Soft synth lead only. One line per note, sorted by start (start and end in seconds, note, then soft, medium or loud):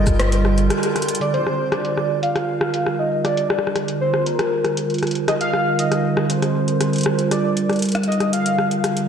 0.00 0.70 D#5 loud
1.21 1.33 D5 loud
1.34 1.69 C5 medium
1.72 2.19 D5 loud
2.23 3.01 F5 loud
2.99 3.24 D#5 medium
3.25 3.72 D5 medium
4.01 4.28 C5 loud
4.26 4.77 A#4 loud
5.28 5.34 D#5 loud
5.41 5.76 F5 loud
5.79 6.31 D#5 loud
6.30 7.31 C5 loud
7.32 7.79 D5 medium
8.08 8.31 D#5 medium
8.33 8.80 F5 loud